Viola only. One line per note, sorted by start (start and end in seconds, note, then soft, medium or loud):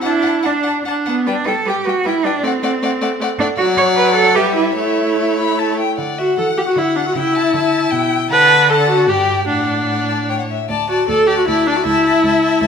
0.04 0.40 D4 medium
0.45 0.81 D4 soft
0.86 1.22 D4 soft
1.27 1.35 G3 medium
1.47 1.55 G3 soft
1.66 1.74 G3 soft
1.87 1.94 G3 medium
2.05 2.13 G3 medium
2.24 2.31 G3 soft
2.43 2.50 A3 medium
2.62 2.70 A3 medium
2.82 2.90 A3 medium
3.01 3.09 A3 medium
3.20 3.27 A3 medium
3.39 3.47 A3 medium
3.59 4.38 F#3 medium
4.37 4.76 G3 medium
4.77 5.77 A3 medium
6.19 6.37 F#4 soft
6.38 6.45 A4 medium
6.57 6.61 G4 medium
6.67 6.79 F#4 medium
6.77 6.97 E4 medium
6.96 7.06 D4 soft
7.07 7.11 F#4 medium
7.16 8.10 E4 medium
8.31 8.71 B4 medium
8.69 8.88 A4 medium
8.89 9.10 F#4 medium
9.09 9.46 G4 medium
9.47 10.27 D4 medium
10.89 11.07 F#4 medium
11.08 11.28 A4 medium
11.27 11.37 G4 medium
11.37 11.46 F#4 medium
11.47 11.68 E4 medium
11.67 11.77 D4 medium
11.76 11.84 F#4 medium
11.84 12.67 E4 medium